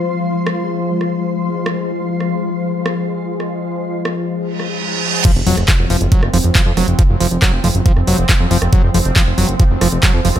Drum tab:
CC |----------------|----------------|----------------|x---------------|
HH |----------------|----------------|----------------|x-oxx-oxx-oxx-ox|
CP |----------------|----------------|----------------|----x-------x---|
SD |----r----r-----r|----r-----r----r|-----r----r-----|---r-----r----r-|
BD |----------------|----------------|----------------|o---o---o---o---|

CC |----------------|----------------|
HH |x-oxx-oxx-o-x-ox|x-oxx-oxx-oxx-ox|
CP |----x-------x---|----x-------x---|
SD |----r----r-----r|----r-----r----r|
BD |o---o---o---o---|o---o---o---o---|